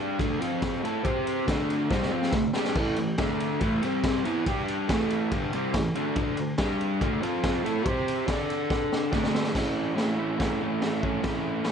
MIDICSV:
0, 0, Header, 1, 3, 480
1, 0, Start_track
1, 0, Tempo, 427350
1, 1170, Time_signature, 4, 2, 24, 8
1, 6448, Tempo, 422833
1, 13233, End_track
2, 0, Start_track
2, 0, Title_t, "Overdriven electric guitar"
2, 0, Program_c, 0, 29
2, 0, Note_on_c, 0, 55, 94
2, 0, Note_on_c, 0, 62, 108
2, 0, Note_on_c, 0, 67, 122
2, 205, Note_off_c, 0, 55, 0
2, 211, Note_off_c, 0, 62, 0
2, 211, Note_off_c, 0, 67, 0
2, 214, Note_on_c, 0, 50, 95
2, 234, Note_on_c, 0, 57, 109
2, 237, Note_on_c, 0, 62, 105
2, 445, Note_off_c, 0, 50, 0
2, 451, Note_on_c, 0, 53, 90
2, 453, Note_off_c, 0, 57, 0
2, 456, Note_off_c, 0, 62, 0
2, 457, Note_on_c, 0, 60, 106
2, 464, Note_on_c, 0, 65, 108
2, 924, Note_off_c, 0, 53, 0
2, 927, Note_off_c, 0, 60, 0
2, 930, Note_off_c, 0, 65, 0
2, 946, Note_on_c, 0, 57, 87
2, 951, Note_on_c, 0, 64, 92
2, 964, Note_on_c, 0, 69, 102
2, 1163, Note_off_c, 0, 57, 0
2, 1165, Note_off_c, 0, 64, 0
2, 1168, Note_on_c, 0, 60, 99
2, 1169, Note_on_c, 0, 67, 99
2, 1173, Note_off_c, 0, 69, 0
2, 1178, Note_on_c, 0, 72, 107
2, 1643, Note_off_c, 0, 60, 0
2, 1644, Note_off_c, 0, 67, 0
2, 1647, Note_on_c, 0, 50, 106
2, 1648, Note_off_c, 0, 72, 0
2, 1659, Note_on_c, 0, 57, 91
2, 1666, Note_on_c, 0, 62, 106
2, 2123, Note_off_c, 0, 50, 0
2, 2128, Note_on_c, 0, 48, 104
2, 2129, Note_off_c, 0, 57, 0
2, 2133, Note_off_c, 0, 62, 0
2, 2139, Note_on_c, 0, 60, 108
2, 2140, Note_on_c, 0, 55, 117
2, 2364, Note_off_c, 0, 48, 0
2, 2365, Note_off_c, 0, 60, 0
2, 2370, Note_off_c, 0, 55, 0
2, 2373, Note_on_c, 0, 53, 94
2, 2378, Note_on_c, 0, 60, 93
2, 2380, Note_on_c, 0, 65, 106
2, 2607, Note_off_c, 0, 53, 0
2, 2609, Note_off_c, 0, 60, 0
2, 2610, Note_off_c, 0, 65, 0
2, 2615, Note_on_c, 0, 50, 61
2, 2623, Note_on_c, 0, 57, 78
2, 2807, Note_off_c, 0, 50, 0
2, 2811, Note_off_c, 0, 57, 0
2, 2857, Note_on_c, 0, 55, 93
2, 2873, Note_on_c, 0, 62, 93
2, 2877, Note_on_c, 0, 67, 93
2, 3088, Note_off_c, 0, 55, 0
2, 3097, Note_off_c, 0, 62, 0
2, 3099, Note_off_c, 0, 67, 0
2, 3100, Note_on_c, 0, 45, 91
2, 3107, Note_on_c, 0, 52, 110
2, 3107, Note_on_c, 0, 57, 103
2, 3330, Note_off_c, 0, 45, 0
2, 3334, Note_off_c, 0, 52, 0
2, 3334, Note_off_c, 0, 57, 0
2, 3348, Note_on_c, 0, 45, 69
2, 3353, Note_on_c, 0, 52, 73
2, 3533, Note_off_c, 0, 45, 0
2, 3536, Note_off_c, 0, 52, 0
2, 3583, Note_on_c, 0, 50, 106
2, 3590, Note_on_c, 0, 57, 110
2, 3592, Note_on_c, 0, 62, 102
2, 4044, Note_off_c, 0, 50, 0
2, 4048, Note_on_c, 0, 45, 101
2, 4055, Note_off_c, 0, 57, 0
2, 4056, Note_off_c, 0, 62, 0
2, 4060, Note_on_c, 0, 52, 113
2, 4070, Note_on_c, 0, 57, 110
2, 4284, Note_off_c, 0, 45, 0
2, 4290, Note_off_c, 0, 52, 0
2, 4295, Note_off_c, 0, 57, 0
2, 4301, Note_on_c, 0, 48, 90
2, 4306, Note_on_c, 0, 55, 105
2, 4319, Note_on_c, 0, 60, 107
2, 4764, Note_off_c, 0, 48, 0
2, 4769, Note_on_c, 0, 52, 88
2, 4772, Note_off_c, 0, 55, 0
2, 4779, Note_off_c, 0, 60, 0
2, 4780, Note_on_c, 0, 59, 105
2, 4796, Note_on_c, 0, 64, 102
2, 5004, Note_off_c, 0, 52, 0
2, 5007, Note_off_c, 0, 59, 0
2, 5012, Note_on_c, 0, 55, 88
2, 5017, Note_off_c, 0, 64, 0
2, 5028, Note_on_c, 0, 62, 103
2, 5033, Note_on_c, 0, 67, 120
2, 5484, Note_off_c, 0, 55, 0
2, 5487, Note_on_c, 0, 45, 99
2, 5492, Note_off_c, 0, 62, 0
2, 5493, Note_on_c, 0, 52, 102
2, 5495, Note_off_c, 0, 67, 0
2, 5502, Note_on_c, 0, 57, 104
2, 5960, Note_off_c, 0, 45, 0
2, 5963, Note_off_c, 0, 52, 0
2, 5968, Note_off_c, 0, 57, 0
2, 5968, Note_on_c, 0, 43, 99
2, 5977, Note_on_c, 0, 50, 100
2, 5987, Note_on_c, 0, 55, 105
2, 6201, Note_off_c, 0, 43, 0
2, 6205, Note_off_c, 0, 50, 0
2, 6210, Note_off_c, 0, 55, 0
2, 6219, Note_on_c, 0, 48, 105
2, 6227, Note_on_c, 0, 55, 94
2, 6235, Note_on_c, 0, 60, 102
2, 6445, Note_off_c, 0, 48, 0
2, 6449, Note_off_c, 0, 55, 0
2, 6453, Note_off_c, 0, 60, 0
2, 6457, Note_on_c, 0, 45, 70
2, 6463, Note_on_c, 0, 52, 71
2, 6645, Note_off_c, 0, 45, 0
2, 6648, Note_off_c, 0, 52, 0
2, 6694, Note_on_c, 0, 50, 97
2, 6702, Note_on_c, 0, 57, 100
2, 6707, Note_on_c, 0, 62, 111
2, 6917, Note_off_c, 0, 50, 0
2, 6923, Note_off_c, 0, 57, 0
2, 6931, Note_off_c, 0, 62, 0
2, 6931, Note_on_c, 0, 50, 89
2, 6937, Note_on_c, 0, 57, 96
2, 6943, Note_on_c, 0, 62, 121
2, 7157, Note_off_c, 0, 50, 0
2, 7159, Note_off_c, 0, 57, 0
2, 7169, Note_off_c, 0, 62, 0
2, 7171, Note_on_c, 0, 50, 69
2, 7172, Note_on_c, 0, 57, 67
2, 7363, Note_off_c, 0, 50, 0
2, 7363, Note_off_c, 0, 57, 0
2, 7412, Note_on_c, 0, 55, 107
2, 7418, Note_on_c, 0, 62, 95
2, 7423, Note_on_c, 0, 67, 112
2, 7885, Note_off_c, 0, 55, 0
2, 7888, Note_off_c, 0, 62, 0
2, 7890, Note_off_c, 0, 67, 0
2, 7899, Note_on_c, 0, 50, 99
2, 7905, Note_on_c, 0, 57, 97
2, 7911, Note_on_c, 0, 62, 99
2, 8119, Note_off_c, 0, 50, 0
2, 8123, Note_on_c, 0, 53, 91
2, 8125, Note_off_c, 0, 57, 0
2, 8129, Note_on_c, 0, 60, 100
2, 8134, Note_off_c, 0, 62, 0
2, 8149, Note_on_c, 0, 65, 110
2, 8600, Note_off_c, 0, 53, 0
2, 8603, Note_off_c, 0, 60, 0
2, 8608, Note_on_c, 0, 57, 94
2, 8613, Note_off_c, 0, 65, 0
2, 8628, Note_on_c, 0, 64, 102
2, 8632, Note_on_c, 0, 69, 110
2, 8856, Note_off_c, 0, 57, 0
2, 8856, Note_on_c, 0, 60, 103
2, 8857, Note_off_c, 0, 64, 0
2, 8857, Note_on_c, 0, 67, 110
2, 8863, Note_off_c, 0, 69, 0
2, 8863, Note_on_c, 0, 72, 105
2, 9313, Note_off_c, 0, 60, 0
2, 9318, Note_on_c, 0, 62, 105
2, 9327, Note_off_c, 0, 67, 0
2, 9330, Note_off_c, 0, 72, 0
2, 9336, Note_on_c, 0, 69, 98
2, 9342, Note_on_c, 0, 74, 108
2, 10276, Note_off_c, 0, 62, 0
2, 10283, Note_on_c, 0, 50, 90
2, 10285, Note_off_c, 0, 69, 0
2, 10288, Note_off_c, 0, 74, 0
2, 10289, Note_on_c, 0, 57, 98
2, 10299, Note_on_c, 0, 62, 96
2, 10745, Note_on_c, 0, 45, 88
2, 10754, Note_off_c, 0, 57, 0
2, 10755, Note_off_c, 0, 50, 0
2, 10759, Note_on_c, 0, 52, 91
2, 10767, Note_off_c, 0, 62, 0
2, 10768, Note_on_c, 0, 57, 98
2, 10776, Note_on_c, 0, 61, 106
2, 10779, Note_on_c, 0, 64, 106
2, 11215, Note_off_c, 0, 45, 0
2, 11219, Note_on_c, 0, 45, 100
2, 11231, Note_off_c, 0, 52, 0
2, 11236, Note_off_c, 0, 57, 0
2, 11236, Note_on_c, 0, 52, 97
2, 11240, Note_on_c, 0, 57, 94
2, 11245, Note_off_c, 0, 61, 0
2, 11250, Note_on_c, 0, 61, 101
2, 11255, Note_off_c, 0, 64, 0
2, 11259, Note_on_c, 0, 64, 105
2, 11466, Note_off_c, 0, 64, 0
2, 11471, Note_on_c, 0, 64, 71
2, 11489, Note_off_c, 0, 61, 0
2, 11493, Note_on_c, 0, 61, 69
2, 11501, Note_off_c, 0, 57, 0
2, 11505, Note_on_c, 0, 57, 59
2, 11698, Note_off_c, 0, 52, 0
2, 11703, Note_on_c, 0, 52, 72
2, 11715, Note_off_c, 0, 57, 0
2, 11719, Note_on_c, 0, 57, 82
2, 11726, Note_off_c, 0, 61, 0
2, 11730, Note_on_c, 0, 61, 88
2, 11738, Note_off_c, 0, 64, 0
2, 11743, Note_on_c, 0, 64, 81
2, 11945, Note_off_c, 0, 64, 0
2, 11949, Note_on_c, 0, 64, 75
2, 11965, Note_off_c, 0, 61, 0
2, 11970, Note_on_c, 0, 61, 69
2, 11990, Note_off_c, 0, 57, 0
2, 11994, Note_on_c, 0, 57, 69
2, 12427, Note_off_c, 0, 64, 0
2, 12431, Note_on_c, 0, 64, 74
2, 12443, Note_off_c, 0, 61, 0
2, 12448, Note_on_c, 0, 61, 64
2, 12459, Note_off_c, 0, 57, 0
2, 12464, Note_on_c, 0, 57, 60
2, 12656, Note_off_c, 0, 45, 0
2, 12661, Note_on_c, 0, 45, 95
2, 12671, Note_off_c, 0, 52, 0
2, 12676, Note_on_c, 0, 52, 91
2, 12681, Note_off_c, 0, 57, 0
2, 12686, Note_off_c, 0, 61, 0
2, 12686, Note_on_c, 0, 57, 92
2, 12691, Note_on_c, 0, 61, 105
2, 12694, Note_off_c, 0, 64, 0
2, 12699, Note_on_c, 0, 64, 109
2, 13140, Note_off_c, 0, 45, 0
2, 13145, Note_on_c, 0, 45, 90
2, 13147, Note_off_c, 0, 52, 0
2, 13151, Note_on_c, 0, 52, 96
2, 13157, Note_off_c, 0, 57, 0
2, 13162, Note_on_c, 0, 57, 95
2, 13170, Note_off_c, 0, 61, 0
2, 13174, Note_on_c, 0, 61, 108
2, 13180, Note_off_c, 0, 64, 0
2, 13184, Note_on_c, 0, 64, 99
2, 13233, Note_off_c, 0, 45, 0
2, 13233, Note_off_c, 0, 52, 0
2, 13233, Note_off_c, 0, 57, 0
2, 13233, Note_off_c, 0, 61, 0
2, 13233, Note_off_c, 0, 64, 0
2, 13233, End_track
3, 0, Start_track
3, 0, Title_t, "Drums"
3, 218, Note_on_c, 9, 36, 116
3, 229, Note_on_c, 9, 51, 107
3, 331, Note_off_c, 9, 36, 0
3, 342, Note_off_c, 9, 51, 0
3, 468, Note_on_c, 9, 51, 89
3, 581, Note_off_c, 9, 51, 0
3, 698, Note_on_c, 9, 38, 109
3, 699, Note_on_c, 9, 36, 116
3, 700, Note_on_c, 9, 51, 104
3, 811, Note_off_c, 9, 36, 0
3, 811, Note_off_c, 9, 38, 0
3, 813, Note_off_c, 9, 51, 0
3, 952, Note_on_c, 9, 51, 82
3, 1065, Note_off_c, 9, 51, 0
3, 1177, Note_on_c, 9, 36, 111
3, 1182, Note_on_c, 9, 51, 102
3, 1290, Note_off_c, 9, 36, 0
3, 1295, Note_off_c, 9, 51, 0
3, 1425, Note_on_c, 9, 51, 82
3, 1537, Note_off_c, 9, 51, 0
3, 1662, Note_on_c, 9, 36, 116
3, 1670, Note_on_c, 9, 38, 113
3, 1672, Note_on_c, 9, 51, 105
3, 1774, Note_off_c, 9, 36, 0
3, 1782, Note_off_c, 9, 38, 0
3, 1784, Note_off_c, 9, 51, 0
3, 1910, Note_on_c, 9, 51, 77
3, 2022, Note_off_c, 9, 51, 0
3, 2140, Note_on_c, 9, 36, 120
3, 2149, Note_on_c, 9, 38, 69
3, 2253, Note_off_c, 9, 36, 0
3, 2262, Note_off_c, 9, 38, 0
3, 2275, Note_on_c, 9, 38, 60
3, 2387, Note_off_c, 9, 38, 0
3, 2499, Note_on_c, 9, 38, 74
3, 2600, Note_off_c, 9, 38, 0
3, 2600, Note_on_c, 9, 38, 90
3, 2613, Note_on_c, 9, 36, 112
3, 2713, Note_off_c, 9, 38, 0
3, 2726, Note_off_c, 9, 36, 0
3, 2846, Note_on_c, 9, 38, 102
3, 2958, Note_off_c, 9, 38, 0
3, 2972, Note_on_c, 9, 38, 98
3, 3084, Note_off_c, 9, 38, 0
3, 3093, Note_on_c, 9, 49, 100
3, 3096, Note_on_c, 9, 36, 114
3, 3205, Note_off_c, 9, 49, 0
3, 3208, Note_off_c, 9, 36, 0
3, 3329, Note_on_c, 9, 51, 77
3, 3441, Note_off_c, 9, 51, 0
3, 3571, Note_on_c, 9, 38, 123
3, 3573, Note_on_c, 9, 51, 98
3, 3579, Note_on_c, 9, 36, 118
3, 3683, Note_off_c, 9, 38, 0
3, 3685, Note_off_c, 9, 51, 0
3, 3691, Note_off_c, 9, 36, 0
3, 3822, Note_on_c, 9, 51, 78
3, 3934, Note_off_c, 9, 51, 0
3, 4050, Note_on_c, 9, 51, 106
3, 4056, Note_on_c, 9, 36, 118
3, 4162, Note_off_c, 9, 51, 0
3, 4168, Note_off_c, 9, 36, 0
3, 4297, Note_on_c, 9, 51, 77
3, 4409, Note_off_c, 9, 51, 0
3, 4534, Note_on_c, 9, 36, 114
3, 4535, Note_on_c, 9, 38, 119
3, 4537, Note_on_c, 9, 51, 113
3, 4646, Note_off_c, 9, 36, 0
3, 4647, Note_off_c, 9, 38, 0
3, 4649, Note_off_c, 9, 51, 0
3, 4776, Note_on_c, 9, 51, 76
3, 4888, Note_off_c, 9, 51, 0
3, 5015, Note_on_c, 9, 36, 116
3, 5017, Note_on_c, 9, 51, 114
3, 5127, Note_off_c, 9, 36, 0
3, 5129, Note_off_c, 9, 51, 0
3, 5259, Note_on_c, 9, 51, 79
3, 5371, Note_off_c, 9, 51, 0
3, 5496, Note_on_c, 9, 36, 112
3, 5501, Note_on_c, 9, 38, 109
3, 5503, Note_on_c, 9, 51, 101
3, 5608, Note_off_c, 9, 36, 0
3, 5614, Note_off_c, 9, 38, 0
3, 5616, Note_off_c, 9, 51, 0
3, 5732, Note_on_c, 9, 51, 73
3, 5845, Note_off_c, 9, 51, 0
3, 5970, Note_on_c, 9, 51, 111
3, 5972, Note_on_c, 9, 36, 111
3, 6082, Note_off_c, 9, 51, 0
3, 6084, Note_off_c, 9, 36, 0
3, 6210, Note_on_c, 9, 51, 79
3, 6322, Note_off_c, 9, 51, 0
3, 6444, Note_on_c, 9, 38, 117
3, 6447, Note_on_c, 9, 51, 104
3, 6448, Note_on_c, 9, 36, 105
3, 6558, Note_off_c, 9, 38, 0
3, 6560, Note_off_c, 9, 51, 0
3, 6561, Note_off_c, 9, 36, 0
3, 6690, Note_on_c, 9, 51, 75
3, 6803, Note_off_c, 9, 51, 0
3, 6920, Note_on_c, 9, 51, 96
3, 6927, Note_on_c, 9, 36, 121
3, 7034, Note_off_c, 9, 51, 0
3, 7041, Note_off_c, 9, 36, 0
3, 7163, Note_on_c, 9, 51, 76
3, 7276, Note_off_c, 9, 51, 0
3, 7399, Note_on_c, 9, 38, 115
3, 7401, Note_on_c, 9, 51, 97
3, 7408, Note_on_c, 9, 36, 122
3, 7512, Note_off_c, 9, 38, 0
3, 7515, Note_off_c, 9, 51, 0
3, 7521, Note_off_c, 9, 36, 0
3, 7658, Note_on_c, 9, 51, 66
3, 7772, Note_off_c, 9, 51, 0
3, 7892, Note_on_c, 9, 36, 111
3, 7897, Note_on_c, 9, 51, 94
3, 8006, Note_off_c, 9, 36, 0
3, 8011, Note_off_c, 9, 51, 0
3, 8140, Note_on_c, 9, 51, 82
3, 8253, Note_off_c, 9, 51, 0
3, 8371, Note_on_c, 9, 38, 120
3, 8373, Note_on_c, 9, 51, 98
3, 8374, Note_on_c, 9, 36, 120
3, 8485, Note_off_c, 9, 38, 0
3, 8487, Note_off_c, 9, 51, 0
3, 8488, Note_off_c, 9, 36, 0
3, 8627, Note_on_c, 9, 51, 78
3, 8740, Note_off_c, 9, 51, 0
3, 8849, Note_on_c, 9, 51, 112
3, 8851, Note_on_c, 9, 36, 125
3, 8963, Note_off_c, 9, 51, 0
3, 8964, Note_off_c, 9, 36, 0
3, 9103, Note_on_c, 9, 51, 90
3, 9217, Note_off_c, 9, 51, 0
3, 9331, Note_on_c, 9, 36, 121
3, 9331, Note_on_c, 9, 38, 118
3, 9334, Note_on_c, 9, 51, 117
3, 9444, Note_off_c, 9, 36, 0
3, 9445, Note_off_c, 9, 38, 0
3, 9447, Note_off_c, 9, 51, 0
3, 9580, Note_on_c, 9, 51, 77
3, 9693, Note_off_c, 9, 51, 0
3, 9811, Note_on_c, 9, 36, 114
3, 9812, Note_on_c, 9, 38, 66
3, 9925, Note_off_c, 9, 36, 0
3, 9925, Note_off_c, 9, 38, 0
3, 10060, Note_on_c, 9, 38, 86
3, 10173, Note_off_c, 9, 38, 0
3, 10288, Note_on_c, 9, 38, 87
3, 10293, Note_on_c, 9, 36, 110
3, 10401, Note_off_c, 9, 38, 0
3, 10406, Note_off_c, 9, 36, 0
3, 10417, Note_on_c, 9, 38, 83
3, 10530, Note_off_c, 9, 38, 0
3, 10542, Note_on_c, 9, 38, 102
3, 10644, Note_off_c, 9, 38, 0
3, 10644, Note_on_c, 9, 38, 102
3, 10757, Note_off_c, 9, 38, 0
3, 10774, Note_on_c, 9, 36, 111
3, 10779, Note_on_c, 9, 38, 106
3, 10781, Note_on_c, 9, 49, 112
3, 10781, Note_on_c, 9, 57, 55
3, 10888, Note_off_c, 9, 36, 0
3, 10893, Note_off_c, 9, 38, 0
3, 10895, Note_off_c, 9, 49, 0
3, 10895, Note_off_c, 9, 57, 0
3, 11259, Note_on_c, 9, 38, 107
3, 11261, Note_on_c, 9, 57, 57
3, 11372, Note_off_c, 9, 38, 0
3, 11375, Note_off_c, 9, 57, 0
3, 11737, Note_on_c, 9, 36, 106
3, 11739, Note_on_c, 9, 38, 108
3, 11741, Note_on_c, 9, 57, 57
3, 11851, Note_off_c, 9, 36, 0
3, 11852, Note_off_c, 9, 38, 0
3, 11855, Note_off_c, 9, 57, 0
3, 12213, Note_on_c, 9, 38, 109
3, 12215, Note_on_c, 9, 57, 61
3, 12326, Note_off_c, 9, 38, 0
3, 12328, Note_off_c, 9, 57, 0
3, 12455, Note_on_c, 9, 36, 81
3, 12568, Note_off_c, 9, 36, 0
3, 12686, Note_on_c, 9, 38, 115
3, 12689, Note_on_c, 9, 57, 59
3, 12692, Note_on_c, 9, 36, 117
3, 12800, Note_off_c, 9, 38, 0
3, 12802, Note_off_c, 9, 57, 0
3, 12806, Note_off_c, 9, 36, 0
3, 13150, Note_on_c, 9, 38, 110
3, 13152, Note_on_c, 9, 57, 56
3, 13233, Note_off_c, 9, 38, 0
3, 13233, Note_off_c, 9, 57, 0
3, 13233, End_track
0, 0, End_of_file